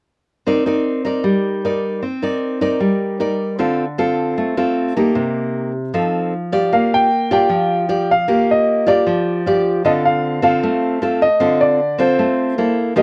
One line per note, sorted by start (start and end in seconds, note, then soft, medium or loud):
0.47 1.23 C4 medium
0.47 0.63 D#4 soft
0.47 0.63 A#4 soft
0.47 0.63 D5 medium
0.66 1.02 D#4 soft
0.66 1.02 A#4 soft
0.66 1.03 D5 medium
1.05 1.60 D#4 medium
1.05 1.61 A#4 soft
1.05 1.61 D5 medium
1.24 2.00 G3 medium
1.65 2.03 D#4 soft
1.65 2.03 A#4 soft
1.65 2.03 D5 soft
2.02 2.79 C4 medium
2.22 2.58 D#4 soft
2.22 2.59 A#4 soft
2.22 2.59 D5 medium
2.61 3.17 D#4 medium
2.61 3.17 A#4 medium
2.61 3.17 D5 medium
2.80 3.57 G3 medium
3.20 3.57 D#4 soft
3.20 3.58 A#4 soft
3.20 3.58 D5 medium
3.58 4.35 D3 medium
3.58 3.84 C4 medium
3.58 3.84 F4 soft
3.58 3.85 A4 medium
3.98 4.54 C4 soft
3.98 4.54 F4 medium
3.98 4.54 A4 medium
4.38 5.14 A3 medium
4.57 4.93 C4 medium
4.57 4.93 F4 soft
4.57 4.93 A4 medium
4.97 5.71 A#3 medium
4.97 5.71 D#4 soft
4.97 5.71 G4 medium
5.15 5.91 C3 medium
5.94 6.70 F3 medium
5.94 6.33 C4 soft
5.94 6.32 D#4 soft
5.94 6.33 A4 soft
6.52 7.08 F4 medium
6.52 7.08 G4 soft
6.52 7.08 D5 medium
6.72 7.48 A#3 medium
6.72 6.93 F5 medium
6.94 7.31 G5 medium
7.31 7.86 F4 medium
7.31 7.86 G4 medium
7.31 7.86 D5 medium
7.31 8.12 G5 medium
7.49 8.26 F3 medium
7.89 8.14 F4 soft
7.89 8.14 G4 soft
7.89 8.14 D5 medium
8.11 8.50 F5 medium
8.28 9.04 A#3 medium
8.28 8.83 F4 soft
8.28 8.83 G4 medium
8.51 8.89 D#5 medium
8.86 9.42 F4 medium
8.86 9.42 G4 soft
8.86 9.42 D5 medium
8.86 9.61 D5 medium
9.07 9.82 F3 medium
9.46 9.82 F4 soft
9.46 9.82 G4 soft
9.46 9.82 D5 medium
9.85 10.60 D3 medium
9.85 10.40 C4 soft
9.85 10.40 F4 medium
9.85 10.40 A4 medium
9.85 9.91 D#5 medium
10.05 10.41 F5 medium
10.42 10.98 C4 medium
10.42 10.98 F4 medium
10.42 10.98 A4 medium
10.42 11.24 F5 medium
10.63 11.39 A3 medium
11.02 11.27 C4 soft
11.02 11.27 F4 soft
11.02 11.27 A4 medium
11.22 11.62 D#5 medium
11.40 12.16 D3 medium
11.40 11.79 C4 soft
11.40 11.79 F4 soft
11.40 11.79 A4 medium
11.61 12.00 D5 medium
11.98 12.54 C4 medium
11.98 12.54 F4 medium
11.98 12.55 A4 medium
11.98 12.74 C5 medium
12.19 12.56 A3 medium
12.58 12.94 A#3 soft
12.58 12.94 E4 soft
12.58 12.94 A4 soft
12.96 13.02 F3 medium
12.96 13.02 A#3 medium
12.96 13.02 D#4 medium
12.96 13.02 G4 medium
12.96 13.02 D#5 medium